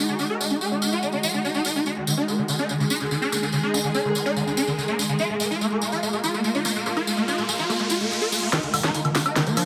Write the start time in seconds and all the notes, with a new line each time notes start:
Already playing: G#3 F#4
0.08 D#4, tambourine
0.19 D#4, tambourine
0.30 A#4
0.40 D#4, tambourine
0.50 D#4, tambourine
0.61 G#4, tambourine
0.72 D#4
0.82 D#4, tambourine
0.92 F#4, tambourine
1.03 D#4, tambourine
1.12 D#4, tambourine
1.23 F4, tambourine
1.34 D#4, tambourine
1.44 D#4, tambourine
1.54 D#4, tambourine
1.65 D#4, tambourine
1.76 D#4, tambourine
1.86 D#4 G#4, tambourine
1.97 D#3
2.07 D#3, tambourine
2.17 D#4, tambourine
2.28 D#3, tambourine
2.38 D#3
2.48 D#3, tambourine
2.59 D#4, tambourine
2.69 D#3, tambourine
2.80 D#3, tambourine
2.90 D#4, tambourine
3.00 D#3, tambourine
3.11 D#3, tambourine
3.22 D4, tambourine
3.32 D#3 A#3, tambourine
3.42 D#3, tambourine
3.52 D#3, tambourine
3.63 D#4
3.74 D#3 G#3, tambourine
3.84 D#3 G#3, tambourine
3.95 D4, tambourine
4.05 D#3
4.15 D#3, tambourine
4.26 D4 D#4, tambourine
4.36 D#3, tambourine
4.47 D#3, tambourine
4.57 D4, tambourine
4.67 D#3, tambourine
4.78 D#3, tambourine
4.88 A#3, tambourine
4.99 D#3, tambourine
5.09 D#3
5.19 F4, tambourine, riser
5.30 A#3
5.40 A#3, tambourine
5.51 F4, tambourine
5.61 A#3, tambourine
5.72 A#3
5.82 A#3, tambourine
5.92 F4, tambourine
6.03 A#3, tambourine
6.13 A#3, tambourine
6.24 F4, tambourine
6.34 A#3, tambourine
6.44 A#3, tambourine
6.55 D#4, tambourine
6.65 A#3, tambourine
6.76 A#3, tambourine
6.86 A#3, tambourine
6.97 A#3 F4, tambourine
7.07 A#3, tambourine
7.17 A#3, tambourine
7.28 D#4, tambourine
7.38 A#3, tambourine
7.49 A#3, tambourine
7.59 F4, tambourine
7.69 A#3, tambourine
7.79 A#3, tambourine
7.90 F#4, tambourine
8.01 A#3, tambourine
8.11 A#3, tambourine
8.21 A#4, tambourine
8.32 A#3, tambourine
8.42 A#3, tambourine
8.53 D#3 A#3 D#4 A#4, snare, closed hi-hat, tambourine, riser, high woodblock
8.63 D#3, closed hi-hat
8.74 D3 D#3, open hi-hat, tambourine, high woodblock
8.84 D#3 D#4, snare, closed hi-hat, tambourine
8.94 D#3 D#4, closed hi-hat, tambourine
9.05 D#3, closed hi-hat, high woodblock
9.15 D#3, snare, open hi-hat, tambourine
9.26 D#4, closed hi-hat, tambourine, high woodblock
9.36 D#3, snare, closed hi-hat, tambourine
9.47 D#3 A#3, closed hi-hat, tambourine
9.57 F3 D#4, open hi-hat, tambourine, high woodblock